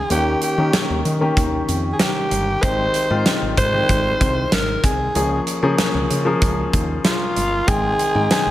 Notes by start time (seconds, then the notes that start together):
Already playing: D#3 G#3 C4 G#4 G5
0.10 D#2 D#3 A#3 C#4 G4, closed hi-hat
0.42 G4, closed hi-hat
0.58 D#3 A#3 C#4 G4
0.73 snare, closed hi-hat
0.90 D#2
1.05 D#3, closed hi-hat
1.21 D#3 A#3 C#4 G4
1.37 D#2, kick, closed hi-hat
1.68 F2, closed hi-hat
1.93 G#4
1.99 G4, snare, closed hi-hat
2.31 G1, closed hi-hat
2.62 G#1 D#3 G#3 C4 G4 C5, kick, closed hi-hat
2.94 closed hi-hat
3.10 G#2 D#3 G#3 C4 F4
3.26 snare, closed hi-hat
3.42 G#1
3.57 G#2 C5, kick, closed hi-hat
3.73 D#3 G#3 C4 G4
3.89 G#1, kick, closed hi-hat
4.21 C2, kick, closed hi-hat
4.52 G#1 A#4, snare, closed hi-hat
4.84 C2 G#4, kick, closed hi-hat
5.15 C#2 F3 A#3 C#4 G#4, closed hi-hat
5.47 closed hi-hat
5.62 C#3 F3 A#3 C#4 G#4
5.78 snare, closed hi-hat
5.94 C#2
6.10 C#3, closed hi-hat
6.25 F3 A#3 C#4 G#4
6.42 C#2, kick, closed hi-hat
6.73 D#2, kick, closed hi-hat
7.05 F4, snare, closed hi-hat
7.36 G1, closed hi-hat
7.67 G#1 D#3 G#3 C4 G#4 G5, kick, closed hi-hat
7.99 closed hi-hat
8.15 G#2 D#3 G#3 C4 G5
8.31 G#4, snare, closed hi-hat
8.46 G#1